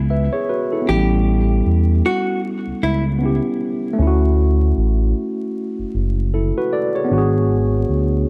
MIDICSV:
0, 0, Header, 1, 4, 480
1, 0, Start_track
1, 0, Key_signature, 3, "major"
1, 0, Tempo, 779221
1, 541, Time_signature, 4, 2, 24, 8
1, 5108, End_track
2, 0, Start_track
2, 0, Title_t, "Hollow-body jazz guitar"
2, 0, Program_c, 0, 26
2, 546, Note_on_c, 0, 67, 80
2, 1239, Note_off_c, 0, 67, 0
2, 1268, Note_on_c, 0, 66, 75
2, 1480, Note_off_c, 0, 66, 0
2, 1744, Note_on_c, 0, 64, 73
2, 1870, Note_off_c, 0, 64, 0
2, 5108, End_track
3, 0, Start_track
3, 0, Title_t, "Tine electric piano"
3, 0, Program_c, 1, 4
3, 0, Control_c, 1, 64, 127
3, 0, Note_on_c, 1, 59, 67
3, 0, Note_on_c, 1, 61, 55
3, 64, Note_on_c, 1, 76, 59
3, 65, Note_on_c, 1, 71, 48
3, 197, Note_off_c, 1, 76, 0
3, 198, Note_off_c, 1, 71, 0
3, 201, Note_on_c, 1, 73, 68
3, 208, Note_on_c, 1, 68, 56
3, 295, Note_off_c, 1, 73, 0
3, 299, Note_off_c, 1, 68, 0
3, 303, Note_on_c, 1, 71, 56
3, 306, Note_on_c, 1, 66, 46
3, 437, Note_off_c, 1, 71, 0
3, 438, Note_off_c, 1, 66, 0
3, 444, Note_on_c, 1, 69, 57
3, 449, Note_on_c, 1, 64, 53
3, 496, Note_off_c, 1, 59, 0
3, 504, Note_on_c, 1, 59, 57
3, 511, Note_off_c, 1, 61, 0
3, 531, Note_on_c, 1, 61, 60
3, 547, Control_c, 1, 64, 0
3, 548, Note_off_c, 1, 64, 0
3, 555, Note_on_c, 1, 64, 60
3, 585, Note_on_c, 1, 55, 70
3, 672, Note_off_c, 1, 69, 0
3, 674, Control_c, 1, 64, 127
3, 1938, Note_off_c, 1, 59, 0
3, 1951, Note_off_c, 1, 61, 0
3, 1963, Note_off_c, 1, 64, 0
3, 1963, Note_on_c, 1, 59, 59
3, 1978, Note_off_c, 1, 55, 0
3, 1979, Note_on_c, 1, 61, 52
3, 1992, Note_on_c, 1, 64, 52
3, 2005, Note_on_c, 1, 67, 64
3, 2422, Note_on_c, 1, 57, 75
3, 2447, Note_off_c, 1, 61, 0
3, 2452, Note_off_c, 1, 59, 0
3, 2455, Note_on_c, 1, 61, 66
3, 2466, Note_off_c, 1, 64, 0
3, 2468, Control_c, 1, 64, 0
3, 2473, Note_off_c, 1, 67, 0
3, 2480, Note_on_c, 1, 64, 67
3, 2508, Note_on_c, 1, 66, 80
3, 2585, Control_c, 1, 64, 127
3, 3886, Note_off_c, 1, 64, 0
3, 3900, Note_off_c, 1, 66, 0
3, 3904, Note_on_c, 1, 69, 58
3, 3909, Note_on_c, 1, 64, 51
3, 4037, Note_off_c, 1, 69, 0
3, 4040, Note_off_c, 1, 64, 0
3, 4051, Note_on_c, 1, 66, 58
3, 4051, Note_on_c, 1, 71, 66
3, 4140, Note_off_c, 1, 66, 0
3, 4140, Note_off_c, 1, 71, 0
3, 4144, Note_on_c, 1, 74, 69
3, 4148, Note_on_c, 1, 69, 47
3, 4277, Note_off_c, 1, 74, 0
3, 4279, Note_off_c, 1, 69, 0
3, 4283, Note_on_c, 1, 73, 61
3, 4288, Note_on_c, 1, 68, 47
3, 4337, Note_off_c, 1, 57, 0
3, 4339, Note_on_c, 1, 59, 80
3, 4353, Note_off_c, 1, 61, 0
3, 4366, Note_on_c, 1, 62, 63
3, 4388, Control_c, 1, 64, 0
3, 4394, Note_on_c, 1, 66, 74
3, 4415, Note_off_c, 1, 68, 0
3, 4422, Note_on_c, 1, 68, 92
3, 4509, Control_c, 1, 64, 127
3, 4511, Note_off_c, 1, 73, 0
3, 5108, Note_off_c, 1, 59, 0
3, 5108, Note_off_c, 1, 62, 0
3, 5108, Note_off_c, 1, 66, 0
3, 5108, Note_off_c, 1, 68, 0
3, 5108, End_track
4, 0, Start_track
4, 0, Title_t, "Analog synth bass"
4, 0, Program_c, 2, 38
4, 0, Note_on_c, 2, 37, 81
4, 180, Note_off_c, 2, 37, 0
4, 545, Note_on_c, 2, 33, 94
4, 998, Note_off_c, 2, 33, 0
4, 1024, Note_on_c, 2, 40, 83
4, 1246, Note_off_c, 2, 40, 0
4, 1646, Note_on_c, 2, 37, 48
4, 1684, Note_off_c, 2, 37, 0
4, 1739, Note_on_c, 2, 37, 81
4, 2097, Note_off_c, 2, 37, 0
4, 2458, Note_on_c, 2, 38, 96
4, 2914, Note_off_c, 2, 38, 0
4, 2941, Note_on_c, 2, 33, 98
4, 3165, Note_off_c, 2, 33, 0
4, 3566, Note_on_c, 2, 30, 47
4, 3604, Note_off_c, 2, 30, 0
4, 3663, Note_on_c, 2, 30, 78
4, 4019, Note_off_c, 2, 30, 0
4, 4380, Note_on_c, 2, 32, 91
4, 4836, Note_off_c, 2, 32, 0
4, 4861, Note_on_c, 2, 38, 78
4, 5085, Note_off_c, 2, 38, 0
4, 5108, End_track
0, 0, End_of_file